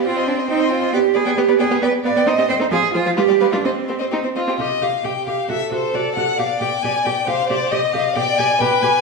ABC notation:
X:1
M:2/4
L:1/16
Q:1/4=134
K:Cm
V:1 name="Violin"
g c' g c' g c' g c' | g z d g =B d g B | g z f g c e g c | f z c f =B d f B |
e z c e G c e G | e2 f2 g2 f2 | =e2 c2 d2 ^f2 | f2 g2 a2 g2 |
f2 d2 e2 f2 | g2 a2 g2 a2 |]
V:2 name="Violin"
c e c e c e c e | d z =B d G B d G | d z =B d E G c E | c z A c F G =B F |
c z G c E2 F2 | z4 G4 | =A8 | d8 |
c4 e4 | d4 =B4 |]
V:3 name="Viola"
C4 C4 | =B, z B, B, B, B, B, B, | =B, z B, B, C C C C | F, z F, F, G, G, G, G, |
C z C C C C C C | G2 G2 G2 G2 | ^F2 F2 F2 F2 | G2 G2 G2 G2 |
G2 G2 G2 G2 | G2 G2 G2 G2 |]
V:4 name="Cello" clef=bass
F2 D2 E2 F2 | G2 A2 G2 A2 | =B2 d2 e2 c2 | A2 F2 G3 D |
C6 z2 | C,2 C,2 C,2 C,2 | C,2 C,2 C,2 C,2 | =B,,2 B,,2 B,,2 B,,2 |
C,2 C,2 C,2 C,2 | =B,,2 B,,2 B,,2 B,,2 |]